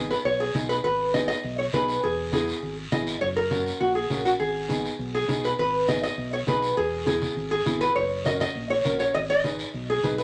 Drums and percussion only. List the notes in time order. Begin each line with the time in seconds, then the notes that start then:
0.11 short guiro
0.26 long guiro
0.55 high conga, short guiro
0.70 short guiro
0.85 long guiro
1.14 high conga, short guiro
1.29 short guiro
1.44 long guiro
1.73 high conga, short guiro
1.88 short guiro
2.03 long guiro
2.33 high conga, short guiro
2.48 short guiro
2.62 long guiro
2.92 high conga, short guiro
3.07 short guiro
3.21 long guiro
3.51 high conga, short guiro
3.66 short guiro
3.81 long guiro
4.10 high conga, short guiro
4.26 short guiro
4.41 long guiro
4.70 high conga, short guiro
4.85 short guiro
5.00 long guiro
5.29 high conga, short guiro
5.44 short guiro
5.59 long guiro
5.89 high conga, short guiro
6.03 short guiro
6.18 long guiro
6.48 high conga, short guiro
6.62 short guiro
6.77 long guiro
7.07 high conga, short guiro
7.22 high conga, short guiro
7.37 long guiro
7.66 high conga, short guiro
7.81 short guiro
7.96 long guiro
8.25 high conga, short guiro
8.40 high conga, short guiro
8.55 long guiro
8.85 high conga, short guiro
8.99 short guiro
9.14 long guiro
9.44 high conga, short guiro
9.59 short guiro
9.74 long guiro
10.04 high conga, short guiro
10.18 short guiro